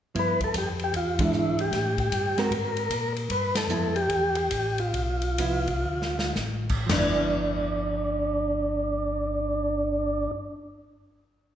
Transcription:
0.15 G2 F3 B3 E4, kick, ride
0.19 B4
0.41 A4, kick, ride
0.54 F2, kick, hi-hat pedal, ride
0.58 G4
0.79 ride
0.84 G4
0.93 E2 F4, kick, ride
1.19 E3 G#3 D4 E4, kick, ride
1.32 G#2, hi-hat pedal
1.59 G4, ride
1.72 A2, kick, snare, ride
1.98 G4, kick, ride
2.12 G2, kick, hi-hat pedal, ride
2.38 G#3 C4 F#4 A#4, snare, ride
2.51 G#2, kick, ride
2.77 ride
2.90 A#2, kick, hi-hat pedal, ride
3.16 ride
3.30 G2 B4, kick, ride
3.55 A4, snare, ride
3.67 F2 F3 B3 E4, hi-hat pedal
3.96 G4, ride
4.09 E2, kick, ride
4.35 G4, ride
4.50 A1, kick, hi-hat pedal, ride
4.78 F4, ride
4.93 B1, kick, ride
5.22 ride
5.38 C2 F3 B3 E4, kick, hi-hat pedal, ride
5.67 kick, ride
5.85 D2
6.02 snare
6.19 snare
6.35 A1, snare, hi-hat pedal
6.69 kick, crash
6.86 G1 F3, snare, floor tom, crash
6.93 B3 D4
6.98 E4

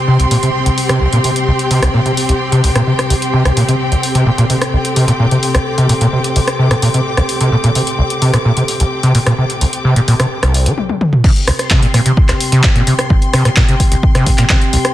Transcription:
Already playing: C3 C4 G4 G5 C6
0.08 C3
0.19 C2, closed hi-hat
0.31 A#2, open hi-hat
0.43 C3, closed hi-hat
0.66 C2, closed hi-hat
0.78 open hi-hat
0.89 C3, cross-stick, closed hi-hat
1.01 C2
1.13 A#2, closed hi-hat
1.24 C3, open hi-hat
1.36 closed hi-hat
1.48 C2
1.59 closed hi-hat
1.71 C3, open hi-hat
1.82 C2, cross-stick, closed hi-hat
1.94 A#2
2.06 C3, closed hi-hat
2.17 open hi-hat
2.29 C2, closed hi-hat
2.52 C3, closed hi-hat
2.64 C2, open hi-hat
2.75 A#2, cross-stick, closed hi-hat
2.87 C3
2.99 cross-stick, closed hi-hat
3.10 C2, open hi-hat
3.22 closed hi-hat
3.33 C3
3.45 C2, cross-stick, closed hi-hat
3.57 A#2, open hi-hat
3.68 C3, closed hi-hat
3.80 A4 C6
3.92 C2, closed hi-hat
4.03 open hi-hat
4.15 C3, closed hi-hat
4.26 A#2
4.38 A#2, closed hi-hat
4.50 C3, open hi-hat
4.62 cross-stick, closed hi-hat
4.73 C2
4.85 closed hi-hat
4.96 C3, open hi-hat
5.03 D6
5.08 A#2, closed hi-hat
5.20 A#2
5.31 C3, closed hi-hat
5.43 open hi-hat
5.55 C2, cross-stick, closed hi-hat
5.78 C3, closed hi-hat
5.89 A#2, open hi-hat
6.01 A#2, closed hi-hat
6.13 C3
6.24 closed hi-hat
6.36 C2, open hi-hat
6.48 cross-stick, closed hi-hat
6.59 C3
6.71 A#2, cross-stick, closed hi-hat
6.82 A#2, open hi-hat
6.94 C3, closed hi-hat
7.17 C2, cross-stick, closed hi-hat
7.29 open hi-hat
7.41 C3, closed hi-hat
7.52 A#2
7.64 A#2, closed hi-hat
7.75 C3, open hi-hat
7.87 closed hi-hat
7.99 C2
8.10 closed hi-hat
8.22 C3, open hi-hat
8.34 A#2, cross-stick, closed hi-hat
8.45 A#2
8.57 C3, closed hi-hat
8.68 open hi-hat
8.80 C2, closed hi-hat
9.03 C3, closed hi-hat
9.15 A#2, open hi-hat
9.27 A#2, cross-stick, closed hi-hat
9.38 C3
9.50 closed hi-hat
9.61 C2, open hi-hat
9.73 closed hi-hat
9.85 C3
9.96 A#2, closed hi-hat
10.08 A#2, open hi-hat
10.20 C3, cross-stick, closed hi-hat
10.43 C2, cross-stick, closed hi-hat
10.54 open hi-hat
10.66 F3, closed hi-hat
10.78 high tom
10.89 high tom
11.01 mid tom
11.13 mid tom
11.24 C3 C4 G4 G5, kick, crash
11.36 closed hi-hat
11.48 C2, cross-stick, open hi-hat
11.59 C6, cross-stick, closed hi-hat
11.70 C3, kick, clap
11.82 A#2, closed hi-hat
11.94 A#2, cross-stick, open hi-hat
12.06 C3, closed hi-hat
12.17 kick
12.29 C2, cross-stick, clap, closed hi-hat
12.41 open hi-hat
12.52 C3, closed hi-hat
12.63 A#2, kick, cross-stick, clap
12.75 A#2, closed hi-hat
12.87 C3, open hi-hat
12.99 cross-stick, closed hi-hat
13.10 C2, kick
13.22 closed hi-hat
13.33 C3, cross-stick, open hi-hat
13.45 A#2, cross-stick, closed hi-hat
13.56 A#2, kick, clap
13.68 C3, closed hi-hat
13.80 kick, open hi-hat
13.92 C2, closed hi-hat
14.03 kick
14.15 C3, cross-stick, closed hi-hat
14.26 A#2, kick, open hi-hat
14.38 A#2, clap, closed hi-hat
14.49 C3, kick, cross-stick, clap
14.61 closed hi-hat
14.73 C2, open hi-hat
14.85 cross-stick, closed hi-hat

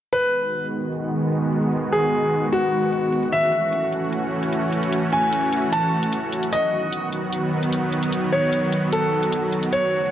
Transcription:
0.13 D#3 G#3 B3 F#4 B4
0.53 closed hi-hat
0.73 closed hi-hat
0.93 closed hi-hat
1.23 closed hi-hat
1.33 closed hi-hat
1.53 closed hi-hat
1.63 closed hi-hat
1.73 closed hi-hat
1.93 G#4
2.13 closed hi-hat
2.33 closed hi-hat
2.53 F#4, closed hi-hat
2.83 closed hi-hat
2.92 closed hi-hat
3.12 closed hi-hat
3.23 closed hi-hat
3.32 E3 A3 C#4 E5, closed hi-hat
3.73 closed hi-hat
3.93 closed hi-hat
4.13 closed hi-hat
4.43 closed hi-hat
4.53 closed hi-hat
4.73 closed hi-hat
4.83 closed hi-hat
4.93 closed hi-hat
5.13 G#5
5.33 closed hi-hat
5.53 closed hi-hat
5.72 A5, closed hi-hat
6.03 closed hi-hat
6.13 closed hi-hat
6.33 closed hi-hat
6.43 closed hi-hat
6.52 D#3 F#3 B3 D#5, closed hi-hat
6.93 closed hi-hat
7.13 closed hi-hat
7.33 closed hi-hat
7.63 closed hi-hat
7.73 closed hi-hat
7.92 closed hi-hat
8.03 closed hi-hat
8.12 closed hi-hat
8.32 C#5
8.53 closed hi-hat
8.73 closed hi-hat
8.93 A4, closed hi-hat
9.23 closed hi-hat
9.33 closed hi-hat
9.53 closed hi-hat
9.63 closed hi-hat
9.73 C#3 A3 F#4 C#5, closed hi-hat

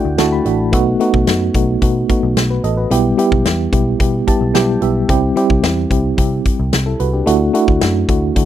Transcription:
Already playing: A3 D4 E4 F#4 D5 F#5 G5
0.05 D2
0.18 D2 A3 D4 E4 F#4 A5, snare, closed hi-hat
0.32 B5
0.45 A1 A3 D4 E4 F#4, closed hi-hat
0.72 B1 A3 B3 D#4 F#4, kick, closed hi-hat
1.00 A3 B3 D#4 F#4, closed hi-hat
1.14 B1, kick
1.27 F#2 A3 B3 D#4 F#4, snare, closed hi-hat
1.54 B1 A3 B3 D#4 F#4, kick, closed hi-hat
1.82 B2 A3 B3 D#4 F#4, kick, closed hi-hat
2.09 A3 B3 D#4 F#4, kick, closed hi-hat
2.23 B1
2.37 B1, snare, closed hi-hat
2.50 F#4 B4
2.64 A1 A4 D#5, closed hi-hat
2.77 F#4 B4
2.90 B1 G3 B3 E4 G4, closed hi-hat
3.18 G3 B3 E4 G4, closed hi-hat
3.32 B1, kick
3.45 E2 G3 B3 E4 G4, snare, closed hi-hat
3.72 B1 G3 B3 E4 G4, kick, closed hi-hat
3.99 B2 G3 B3 E4 G4, kick, closed hi-hat
4.27 G3 B3 E4 G4 A5, kick, closed hi-hat
4.41 B1
4.54 B1 G3 B3 E4 G4 G5, snare, closed hi-hat
4.81 B1 G3 B3 E4 G4 E5, closed hi-hat
5.09 C2 G3 C4 E4 G4, kick, closed hi-hat
5.36 G3 C4 E4 G4, closed hi-hat
5.50 C2, kick
5.63 E2 G3 C4 E4 G4, snare, closed hi-hat
5.90 C2 G3 C4 E4 G4, kick, closed hi-hat
6.17 C3 G3 C4 E4 G4, kick, closed hi-hat
6.45 kick, closed hi-hat
6.59 C2
6.73 C2, snare, closed hi-hat
6.86 E4 A4
7.00 C2 F#4 B4, closed hi-hat
7.13 D4 G4
7.26 D2 A3 D4 E4 F#4, closed hi-hat
7.54 A3 D4 E4 F#4, closed hi-hat
7.68 D2, kick
7.81 F#2 A3 D4 E4 F#4, snare, closed hi-hat
8.08 D2 A3 D4 E4 F#4, kick, closed hi-hat
8.36 D3 A3 D4 E4 F#4, kick, closed hi-hat

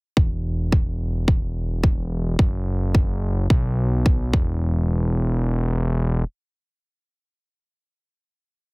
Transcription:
0.17 E1, kick
0.72 kick
1.28 kick
1.84 kick
2.39 F#1, kick
2.95 kick
3.50 B1, kick
4.06 kick
4.34 E1, kick

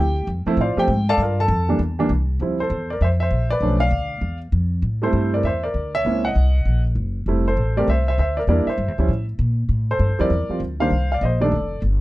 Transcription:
Already playing: D2 G4 G5
0.27 F2
0.46 F3 A3 C4 E4, muted upright bass stroke
0.57 A2 F5
0.61 F4 C5 D5
0.77 F3 A3 C4 G4 G5, muted upright bass stroke
0.88 G#2
1.09 A4 D5 F5 A5
1.18 G2
1.22 F4 A#4 D5 F5
1.40 A4 A5
1.48 F2
1.69 E3 G3 A#3 D4
1.79 E2
1.99 E3 G3 A#3 D4
2.09 C2
2.40 D2 F3 G3 C4 E4
2.60 A4 C5
2.70 E2
2.90 A#4 D5
3.01 F2 C5 E5
3.20 C5 E5
3.31 A#1
3.50 B4 D5
3.61 B1 F3 A3 C#4 D4
3.80 D5 F5
3.91 D2
4.21 E2
4.52 F2
4.82 A2
5.02 G3 A3 C4 E4 A4 C5
5.13 G2
5.34 A#4 D5
5.43 E2 C5 E5
5.63 A#4 D5
5.74 D2
5.95 C#5 E5
6.05 C#2 A#3 C4 C#4 E4
6.25 D#5 F#5
6.35 C2
6.65 A#1
6.95 F#1
7.26 F1 G3 A3 C4 E4
7.48 A4 C5
7.57 A1
7.77 G3 A3 C4 G4 A#4 D5
7.87 C2 C5 E5
8.08 C5 E5
8.18 D2 C5 E5
8.37 A#4 D5
8.47 E2 G3 A#3 D4 E4 A#4 D5
8.66 C5 E5, muted upright bass stroke
8.78 G2
8.88 E2
8.98 D2 F3 G3 C#4 E4
9.08 A2
9.39 A#2
9.69 A2
9.91 A4 C5
9.99 G2
10.09 F2
10.19 D2 F3 G3 C4 E4 A#4 D5
10.30 E2
10.49 F3 G3 C4 F4, muted upright bass stroke
10.60 D2
10.80 D#3 G3 A#3 D4 C5 F5
10.90 C2
11.12 D5 F5
11.21 A#1 C5 D#5
11.41 D#3 G3 A3 D4 A4 D5
11.52 F1
11.82 G1

